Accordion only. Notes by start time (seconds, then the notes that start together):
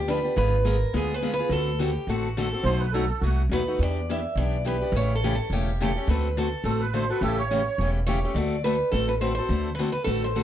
2.63 C5
2.80 B4
2.92 A4
3.21 F#4
6.64 A4
6.80 B4
6.93 C5
7.10 B4
7.22 A4
7.38 C#5